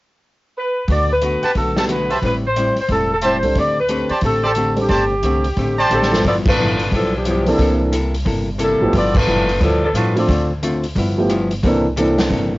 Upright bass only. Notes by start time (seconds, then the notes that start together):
0.88 D2
1.43 muted upright bass stroke
1.55 B1
2.22 A1
2.76 muted upright bass stroke
2.88 E1
3.42 C2
3.55 D2
4.10 muted upright bass stroke
4.22 A1
4.89 G1
5.22 C2
5.56 A1
5.90 A1
6.24 G1
6.91 B1
7.58 C2
8.25 G1
8.80 G#1
8.93 G1
9.27 F#1
9.61 D2
9.94 A2
10.28 D2
10.95 G1
11.63 C2
12.30 G1